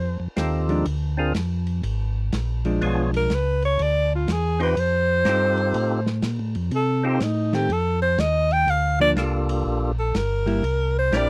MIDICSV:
0, 0, Header, 1, 6, 480
1, 0, Start_track
1, 0, Tempo, 488998
1, 842, Time_signature, 4, 2, 24, 8
1, 11088, End_track
2, 0, Start_track
2, 0, Title_t, "Alto saxophone"
2, 0, Program_c, 0, 65
2, 0, Note_on_c, 0, 72, 75
2, 210, Note_off_c, 0, 72, 0
2, 3108, Note_on_c, 0, 70, 95
2, 3282, Note_on_c, 0, 71, 91
2, 3296, Note_off_c, 0, 70, 0
2, 3579, Note_off_c, 0, 71, 0
2, 3585, Note_on_c, 0, 73, 104
2, 3759, Note_on_c, 0, 74, 97
2, 3774, Note_off_c, 0, 73, 0
2, 4058, Note_off_c, 0, 74, 0
2, 4077, Note_on_c, 0, 65, 74
2, 4240, Note_on_c, 0, 68, 82
2, 4254, Note_off_c, 0, 65, 0
2, 4538, Note_off_c, 0, 68, 0
2, 4545, Note_on_c, 0, 71, 89
2, 4712, Note_on_c, 0, 72, 99
2, 4726, Note_off_c, 0, 71, 0
2, 6138, Note_off_c, 0, 72, 0
2, 6631, Note_on_c, 0, 69, 82
2, 6932, Note_on_c, 0, 60, 72
2, 6947, Note_off_c, 0, 69, 0
2, 7098, Note_on_c, 0, 63, 79
2, 7112, Note_off_c, 0, 60, 0
2, 7409, Note_on_c, 0, 67, 90
2, 7424, Note_off_c, 0, 63, 0
2, 7582, Note_on_c, 0, 69, 82
2, 7596, Note_off_c, 0, 67, 0
2, 7869, Note_off_c, 0, 69, 0
2, 7875, Note_on_c, 0, 72, 92
2, 8050, Note_on_c, 0, 75, 93
2, 8065, Note_off_c, 0, 72, 0
2, 8370, Note_on_c, 0, 79, 103
2, 8384, Note_off_c, 0, 75, 0
2, 8542, Note_on_c, 0, 77, 89
2, 8557, Note_off_c, 0, 79, 0
2, 8841, Note_off_c, 0, 77, 0
2, 8847, Note_on_c, 0, 74, 111
2, 8943, Note_off_c, 0, 74, 0
2, 9810, Note_on_c, 0, 69, 85
2, 9981, Note_on_c, 0, 70, 93
2, 9996, Note_off_c, 0, 69, 0
2, 10769, Note_off_c, 0, 70, 0
2, 10784, Note_on_c, 0, 72, 101
2, 10955, Note_on_c, 0, 74, 104
2, 10970, Note_off_c, 0, 72, 0
2, 11088, Note_off_c, 0, 74, 0
2, 11088, End_track
3, 0, Start_track
3, 0, Title_t, "Tonewheel organ"
3, 0, Program_c, 1, 16
3, 356, Note_on_c, 1, 60, 59
3, 360, Note_on_c, 1, 63, 56
3, 360, Note_on_c, 1, 65, 55
3, 368, Note_on_c, 1, 67, 59
3, 371, Note_on_c, 1, 69, 64
3, 839, Note_off_c, 1, 60, 0
3, 841, Note_off_c, 1, 63, 0
3, 841, Note_off_c, 1, 65, 0
3, 845, Note_off_c, 1, 67, 0
3, 847, Note_off_c, 1, 69, 0
3, 1151, Note_on_c, 1, 60, 69
3, 1154, Note_on_c, 1, 62, 58
3, 1164, Note_on_c, 1, 65, 62
3, 1166, Note_on_c, 1, 68, 62
3, 1172, Note_on_c, 1, 70, 74
3, 1302, Note_off_c, 1, 60, 0
3, 1304, Note_off_c, 1, 62, 0
3, 1309, Note_off_c, 1, 65, 0
3, 1310, Note_off_c, 1, 68, 0
3, 1313, Note_off_c, 1, 70, 0
3, 2760, Note_on_c, 1, 59, 68
3, 2766, Note_on_c, 1, 62, 64
3, 2769, Note_on_c, 1, 65, 61
3, 2775, Note_on_c, 1, 68, 57
3, 2776, Note_on_c, 1, 73, 74
3, 3047, Note_off_c, 1, 59, 0
3, 3050, Note_off_c, 1, 62, 0
3, 3052, Note_off_c, 1, 65, 0
3, 3055, Note_off_c, 1, 68, 0
3, 3055, Note_off_c, 1, 73, 0
3, 4508, Note_on_c, 1, 60, 65
3, 4515, Note_on_c, 1, 63, 61
3, 4516, Note_on_c, 1, 65, 58
3, 4522, Note_on_c, 1, 67, 57
3, 4525, Note_on_c, 1, 72, 72
3, 4662, Note_off_c, 1, 60, 0
3, 4665, Note_off_c, 1, 63, 0
3, 4666, Note_off_c, 1, 65, 0
3, 4669, Note_off_c, 1, 67, 0
3, 4670, Note_off_c, 1, 72, 0
3, 5151, Note_on_c, 1, 60, 62
3, 5156, Note_on_c, 1, 63, 55
3, 5160, Note_on_c, 1, 65, 57
3, 5163, Note_on_c, 1, 67, 55
3, 5169, Note_on_c, 1, 69, 65
3, 5890, Note_off_c, 1, 60, 0
3, 5893, Note_off_c, 1, 63, 0
3, 5895, Note_off_c, 1, 65, 0
3, 5897, Note_off_c, 1, 67, 0
3, 5899, Note_off_c, 1, 69, 0
3, 6905, Note_on_c, 1, 60, 66
3, 6906, Note_on_c, 1, 63, 65
3, 6914, Note_on_c, 1, 65, 63
3, 6916, Note_on_c, 1, 67, 65
3, 6922, Note_on_c, 1, 69, 79
3, 7060, Note_off_c, 1, 60, 0
3, 7060, Note_off_c, 1, 63, 0
3, 7064, Note_off_c, 1, 65, 0
3, 7065, Note_off_c, 1, 67, 0
3, 7068, Note_off_c, 1, 69, 0
3, 8997, Note_on_c, 1, 62, 57
3, 8998, Note_on_c, 1, 58, 58
3, 9001, Note_on_c, 1, 65, 55
3, 9009, Note_on_c, 1, 67, 53
3, 9010, Note_on_c, 1, 69, 67
3, 9733, Note_off_c, 1, 62, 0
3, 9734, Note_off_c, 1, 58, 0
3, 9735, Note_off_c, 1, 65, 0
3, 9739, Note_off_c, 1, 67, 0
3, 9740, Note_off_c, 1, 69, 0
3, 10915, Note_on_c, 1, 60, 63
3, 10920, Note_on_c, 1, 62, 56
3, 10927, Note_on_c, 1, 64, 56
3, 10928, Note_on_c, 1, 67, 57
3, 10933, Note_on_c, 1, 70, 73
3, 11088, Note_off_c, 1, 60, 0
3, 11088, Note_off_c, 1, 62, 0
3, 11088, Note_off_c, 1, 64, 0
3, 11088, Note_off_c, 1, 67, 0
3, 11088, Note_off_c, 1, 70, 0
3, 11088, End_track
4, 0, Start_track
4, 0, Title_t, "Hollow-body jazz guitar"
4, 0, Program_c, 2, 26
4, 675, Note_on_c, 2, 53, 55
4, 681, Note_on_c, 2, 56, 55
4, 689, Note_on_c, 2, 62, 63
4, 824, Note_off_c, 2, 53, 0
4, 827, Note_off_c, 2, 56, 0
4, 831, Note_off_c, 2, 62, 0
4, 2603, Note_on_c, 2, 53, 59
4, 2608, Note_on_c, 2, 56, 62
4, 2613, Note_on_c, 2, 62, 64
4, 3213, Note_off_c, 2, 53, 0
4, 3216, Note_off_c, 2, 56, 0
4, 3218, Note_off_c, 2, 62, 0
4, 7391, Note_on_c, 2, 51, 58
4, 7398, Note_on_c, 2, 57, 63
4, 7404, Note_on_c, 2, 60, 64
4, 7542, Note_off_c, 2, 51, 0
4, 7546, Note_off_c, 2, 57, 0
4, 7549, Note_off_c, 2, 60, 0
4, 8833, Note_on_c, 2, 53, 61
4, 8839, Note_on_c, 2, 58, 65
4, 8842, Note_on_c, 2, 62, 72
4, 8983, Note_off_c, 2, 53, 0
4, 8987, Note_off_c, 2, 58, 0
4, 8988, Note_off_c, 2, 62, 0
4, 10269, Note_on_c, 2, 55, 58
4, 10277, Note_on_c, 2, 58, 60
4, 10281, Note_on_c, 2, 64, 65
4, 10422, Note_off_c, 2, 55, 0
4, 10426, Note_off_c, 2, 58, 0
4, 10428, Note_off_c, 2, 64, 0
4, 11088, End_track
5, 0, Start_track
5, 0, Title_t, "Tonewheel organ"
5, 0, Program_c, 3, 16
5, 0, Note_on_c, 3, 41, 80
5, 171, Note_off_c, 3, 41, 0
5, 194, Note_on_c, 3, 41, 37
5, 277, Note_off_c, 3, 41, 0
5, 360, Note_on_c, 3, 39, 83
5, 827, Note_off_c, 3, 39, 0
5, 845, Note_on_c, 3, 38, 82
5, 1310, Note_off_c, 3, 38, 0
5, 1319, Note_on_c, 3, 41, 82
5, 1787, Note_off_c, 3, 41, 0
5, 1801, Note_on_c, 3, 32, 83
5, 2268, Note_off_c, 3, 32, 0
5, 2282, Note_on_c, 3, 34, 86
5, 2749, Note_off_c, 3, 34, 0
5, 2764, Note_on_c, 3, 35, 84
5, 3230, Note_off_c, 3, 35, 0
5, 3240, Note_on_c, 3, 37, 88
5, 3708, Note_off_c, 3, 37, 0
5, 3724, Note_on_c, 3, 38, 81
5, 4190, Note_off_c, 3, 38, 0
5, 4200, Note_on_c, 3, 40, 82
5, 4668, Note_off_c, 3, 40, 0
5, 4681, Note_on_c, 3, 41, 81
5, 5148, Note_off_c, 3, 41, 0
5, 5160, Note_on_c, 3, 43, 84
5, 5627, Note_off_c, 3, 43, 0
5, 5639, Note_on_c, 3, 45, 78
5, 6107, Note_off_c, 3, 45, 0
5, 6114, Note_on_c, 3, 46, 85
5, 6274, Note_off_c, 3, 46, 0
5, 6276, Note_on_c, 3, 45, 54
5, 6436, Note_on_c, 3, 41, 70
5, 6440, Note_off_c, 3, 45, 0
5, 6588, Note_off_c, 3, 41, 0
5, 6594, Note_on_c, 3, 48, 87
5, 7064, Note_off_c, 3, 48, 0
5, 7075, Note_on_c, 3, 45, 87
5, 7545, Note_off_c, 3, 45, 0
5, 7551, Note_on_c, 3, 41, 86
5, 8022, Note_off_c, 3, 41, 0
5, 8031, Note_on_c, 3, 39, 86
5, 8502, Note_off_c, 3, 39, 0
5, 8514, Note_on_c, 3, 38, 81
5, 8984, Note_off_c, 3, 38, 0
5, 8989, Note_on_c, 3, 36, 85
5, 9461, Note_off_c, 3, 36, 0
5, 9477, Note_on_c, 3, 34, 80
5, 9946, Note_off_c, 3, 34, 0
5, 9957, Note_on_c, 3, 31, 89
5, 10426, Note_off_c, 3, 31, 0
5, 10437, Note_on_c, 3, 36, 89
5, 10906, Note_off_c, 3, 36, 0
5, 10916, Note_on_c, 3, 34, 89
5, 11088, Note_off_c, 3, 34, 0
5, 11088, End_track
6, 0, Start_track
6, 0, Title_t, "Drums"
6, 360, Note_on_c, 9, 44, 52
6, 360, Note_on_c, 9, 51, 64
6, 361, Note_on_c, 9, 38, 67
6, 458, Note_off_c, 9, 44, 0
6, 458, Note_off_c, 9, 51, 0
6, 459, Note_off_c, 9, 38, 0
6, 677, Note_on_c, 9, 51, 43
6, 776, Note_off_c, 9, 51, 0
6, 839, Note_on_c, 9, 51, 65
6, 938, Note_off_c, 9, 51, 0
6, 1321, Note_on_c, 9, 44, 49
6, 1321, Note_on_c, 9, 51, 68
6, 1322, Note_on_c, 9, 38, 63
6, 1419, Note_off_c, 9, 44, 0
6, 1419, Note_off_c, 9, 51, 0
6, 1420, Note_off_c, 9, 38, 0
6, 1636, Note_on_c, 9, 51, 45
6, 1734, Note_off_c, 9, 51, 0
6, 1802, Note_on_c, 9, 51, 60
6, 1900, Note_off_c, 9, 51, 0
6, 2283, Note_on_c, 9, 44, 51
6, 2283, Note_on_c, 9, 51, 67
6, 2284, Note_on_c, 9, 38, 68
6, 2381, Note_off_c, 9, 44, 0
6, 2381, Note_off_c, 9, 51, 0
6, 2382, Note_off_c, 9, 38, 0
6, 2599, Note_on_c, 9, 51, 46
6, 2697, Note_off_c, 9, 51, 0
6, 2765, Note_on_c, 9, 51, 60
6, 2864, Note_off_c, 9, 51, 0
6, 3081, Note_on_c, 9, 51, 49
6, 3179, Note_off_c, 9, 51, 0
6, 3239, Note_on_c, 9, 44, 59
6, 3239, Note_on_c, 9, 51, 64
6, 3240, Note_on_c, 9, 38, 62
6, 3337, Note_off_c, 9, 44, 0
6, 3337, Note_off_c, 9, 51, 0
6, 3338, Note_off_c, 9, 38, 0
6, 3556, Note_on_c, 9, 51, 44
6, 3654, Note_off_c, 9, 51, 0
6, 3721, Note_on_c, 9, 51, 60
6, 3819, Note_off_c, 9, 51, 0
6, 4202, Note_on_c, 9, 44, 64
6, 4202, Note_on_c, 9, 51, 68
6, 4203, Note_on_c, 9, 38, 72
6, 4300, Note_off_c, 9, 44, 0
6, 4300, Note_off_c, 9, 51, 0
6, 4301, Note_off_c, 9, 38, 0
6, 4518, Note_on_c, 9, 51, 46
6, 4617, Note_off_c, 9, 51, 0
6, 4682, Note_on_c, 9, 51, 67
6, 4780, Note_off_c, 9, 51, 0
6, 5154, Note_on_c, 9, 44, 46
6, 5154, Note_on_c, 9, 51, 64
6, 5155, Note_on_c, 9, 38, 65
6, 5253, Note_off_c, 9, 44, 0
6, 5253, Note_off_c, 9, 51, 0
6, 5254, Note_off_c, 9, 38, 0
6, 5473, Note_on_c, 9, 51, 46
6, 5571, Note_off_c, 9, 51, 0
6, 5636, Note_on_c, 9, 51, 62
6, 5734, Note_off_c, 9, 51, 0
6, 5953, Note_on_c, 9, 38, 55
6, 6051, Note_off_c, 9, 38, 0
6, 6109, Note_on_c, 9, 44, 51
6, 6109, Note_on_c, 9, 51, 68
6, 6110, Note_on_c, 9, 38, 70
6, 6207, Note_off_c, 9, 44, 0
6, 6207, Note_off_c, 9, 51, 0
6, 6208, Note_off_c, 9, 38, 0
6, 6428, Note_on_c, 9, 51, 46
6, 6526, Note_off_c, 9, 51, 0
6, 6589, Note_on_c, 9, 51, 57
6, 6688, Note_off_c, 9, 51, 0
6, 7072, Note_on_c, 9, 44, 54
6, 7072, Note_on_c, 9, 51, 65
6, 7073, Note_on_c, 9, 38, 65
6, 7170, Note_off_c, 9, 44, 0
6, 7170, Note_off_c, 9, 51, 0
6, 7171, Note_off_c, 9, 38, 0
6, 7393, Note_on_c, 9, 51, 43
6, 7394, Note_on_c, 9, 38, 47
6, 7491, Note_off_c, 9, 51, 0
6, 7492, Note_off_c, 9, 38, 0
6, 7556, Note_on_c, 9, 51, 60
6, 7654, Note_off_c, 9, 51, 0
6, 8034, Note_on_c, 9, 44, 62
6, 8034, Note_on_c, 9, 51, 64
6, 8035, Note_on_c, 9, 38, 69
6, 8132, Note_off_c, 9, 44, 0
6, 8132, Note_off_c, 9, 51, 0
6, 8133, Note_off_c, 9, 38, 0
6, 8352, Note_on_c, 9, 51, 43
6, 8450, Note_off_c, 9, 51, 0
6, 8518, Note_on_c, 9, 51, 63
6, 8616, Note_off_c, 9, 51, 0
6, 8997, Note_on_c, 9, 44, 60
6, 8997, Note_on_c, 9, 51, 60
6, 8998, Note_on_c, 9, 38, 65
6, 9096, Note_off_c, 9, 44, 0
6, 9096, Note_off_c, 9, 51, 0
6, 9097, Note_off_c, 9, 38, 0
6, 9317, Note_on_c, 9, 51, 67
6, 9415, Note_off_c, 9, 51, 0
6, 9961, Note_on_c, 9, 44, 63
6, 9961, Note_on_c, 9, 51, 69
6, 9962, Note_on_c, 9, 38, 71
6, 10059, Note_off_c, 9, 44, 0
6, 10059, Note_off_c, 9, 51, 0
6, 10060, Note_off_c, 9, 38, 0
6, 10282, Note_on_c, 9, 51, 44
6, 10380, Note_off_c, 9, 51, 0
6, 10443, Note_on_c, 9, 51, 60
6, 10541, Note_off_c, 9, 51, 0
6, 10921, Note_on_c, 9, 44, 58
6, 10921, Note_on_c, 9, 51, 66
6, 10922, Note_on_c, 9, 38, 67
6, 11019, Note_off_c, 9, 44, 0
6, 11019, Note_off_c, 9, 51, 0
6, 11020, Note_off_c, 9, 38, 0
6, 11088, End_track
0, 0, End_of_file